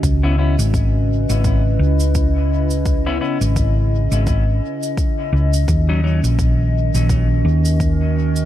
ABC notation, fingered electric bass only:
X:1
M:4/4
L:1/16
Q:"Swing 16ths" 1/4=85
K:C#dor
V:1 name="Fingered electric bass" clef=bass
C,,3 G,,,4 G,,,3 C,,6- | C,,2 z G,,,4 G,,,3 z4 C,,2 | D,,3 A,,,4 A,,,3 D,,6 |]